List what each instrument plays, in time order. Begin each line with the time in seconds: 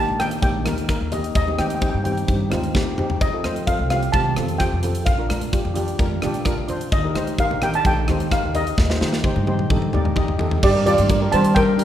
Already playing: steel pan A#3 D#4 G4 A5
0.08 upright bass A#1, high conga
0.19 steel pan A#3 D#4 A#4 G5, cross-stick, closed hi-hat, low conga
0.31 closed hi-hat
0.42 upright bass A#1, steel pan A#3 D#4 G4 G5, kick, closed hi-hat, high conga, low conga
0.65 upright bass D#2, steel pan A#3 D#4 A#4, cross-stick, closed hi-hat, high conga, low conga
0.78 closed hi-hat
0.88 steel pan A#3 D#4 A#4, kick, cross-stick, closed hi-hat
1.01 upright bass D#2
1.11 steel pan A#3 D#4 G4 D#5, closed hi-hat, low conga
1.24 closed hi-hat
1.35 upright bass D#2, steel pan D#5, kick, closed hi-hat
1.46 steel pan C4 D#4 G4, high conga
1.58 upright bass D#3, steel pan C4 D#4 G4 G5, cross-stick, closed hi-hat, high conga
1.67 steel pan G5, closed hi-hat
1.75 steel pan G5
1.81 steel pan C4 D#4 G4 G5, kick, closed hi-hat
1.90 steel pan G5
1.94 upright bass G2, steel pan G5
2.04 steel pan C4 D#4 G4 G5, closed hi-hat, low conga
2.12 steel pan G5
2.18 closed hi-hat
2.27 upright bass G2, steel pan C4 D#4 G4, kick, closed hi-hat, low conga
2.50 upright bass D#2, steel pan C4 D#4 F4, cross-stick, closed hi-hat, high conga, low conga
2.63 closed hi-hat
2.74 upright bass D#2, steel pan C4 D#4 G4, kick, snare
2.97 upright bass F2, steel pan C4 D#4 G4, mid tom, low conga
3.10 floor tom
3.21 upright bass F2, steel pan D#5, kick, closed hi-hat
3.33 steel pan C4 F4 A4
3.44 upright bass F3, steel pan C4 F4 C5, cross-stick, closed hi-hat, high conga
3.56 closed hi-hat
3.67 steel pan C4 F4 A4 F5, kick, closed hi-hat
3.79 upright bass C2, high conga
3.90 steel pan C4 F4 G4 F5, cross-stick, closed hi-hat, low conga
4.03 closed hi-hat
4.12 upright bass C2, steel pan C4 F4 G4 A5, kick, closed hi-hat, high conga, low conga
4.36 upright bass F2, steel pan C4 F4 A4, cross-stick, closed hi-hat, high conga, low conga
4.48 closed hi-hat
4.58 steel pan C4 F4 G4 G5, kick, cross-stick, closed hi-hat
4.73 upright bass F2
4.83 steel pan C4 F4 A4, closed hi-hat, low conga
4.95 closed hi-hat
5.06 upright bass A#1, steel pan F5, kick, closed hi-hat
5.18 steel pan D4 F4 A#4
5.29 upright bass A#2, steel pan D4 F4 A#4, cross-stick, closed hi-hat, high conga
5.41 closed hi-hat
5.52 steel pan D4 F4 G4, kick, closed hi-hat
5.65 upright bass F2, high conga
5.74 steel pan D4 F4 G4, closed hi-hat, low conga
5.88 closed hi-hat
5.98 upright bass F2, steel pan D4 F4 A#4, kick, closed hi-hat, high conga, low conga
6.22 upright bass A#1, steel pan D4 F4 G4, cross-stick, closed hi-hat, high conga, low conga
6.34 closed hi-hat
6.45 steel pan D4 F4 A#4, kick, cross-stick, closed hi-hat
6.58 upright bass A#1
6.68 steel pan D4 F4 C5, closed hi-hat, low conga
6.81 closed hi-hat
6.92 upright bass D#2, steel pan D#5, kick, closed hi-hat
7.03 steel pan D#4 G4 A#4
7.14 upright bass D#3, steel pan D#4 G4 C5, cross-stick, closed hi-hat, high conga
7.27 closed hi-hat
7.38 steel pan D#4 G4 A#4 F5, kick, closed hi-hat
7.51 upright bass A#1, high conga
7.62 steel pan D#4 G4 A#4 G5, cross-stick, closed hi-hat, low conga
7.74 steel pan A5, closed hi-hat
7.84 upright bass A#1, steel pan D#4 G4 A4 G5, kick, closed hi-hat, high conga, low conga
8.08 upright bass D#2, steel pan D#4 G4 C5, cross-stick, closed hi-hat, high conga, low conga
8.20 closed hi-hat
8.31 steel pan D#4 G4 A#4 F5, kick, cross-stick, closed hi-hat
8.43 upright bass D#2
8.54 steel pan D#4 G4 A#4 D#5, closed hi-hat, low conga
8.67 closed hi-hat
8.78 upright bass D#2, kick, snare
8.89 steel pan D#4 G4 C5, snare
9.00 upright bass D#3, steel pan D#4 G4 C5, snare
9.13 snare
9.24 steel pan D#4 G4 C5, kick, high tom
9.36 upright bass G2, high tom, high conga
9.46 steel pan D#4 G4 C5, high tom, low conga
9.59 mid tom
9.70 upright bass G2, steel pan D#4 G4 A4, kick, mid tom, high conga, low conga
9.82 mid tom
9.93 upright bass D#2, steel pan D#4 G4 D5, mid tom, high conga, low conga
10.05 mid tom
10.16 steel pan D#4 G4 D#5, kick, mid tom
10.28 upright bass D#2, floor tom
10.38 steel pan D#4 G4 A4, floor tom, low conga
10.51 floor tom
10.63 upright bass G2, steel pan G4 D5, kick, crash
10.73 steel pan D4 G4 A#4
10.85 steel pan D4 F4 G4 A#4 D5, closed hi-hat, low conga
10.98 upright bass G2, closed hi-hat, high conga
11.08 steel pan D4 G4 A#4, kick, closed hi-hat, high conga
11.20 steel pan D4 G4 A#4
11.31 upright bass G3, steel pan D4 G4 A#4 C5 A5, closed hi-hat, low conga
11.44 closed hi-hat
11.55 steel pan A#4 G5, kick, closed hi-hat, low conga
11.77 steel pan D4 G4 A#4, closed hi-hat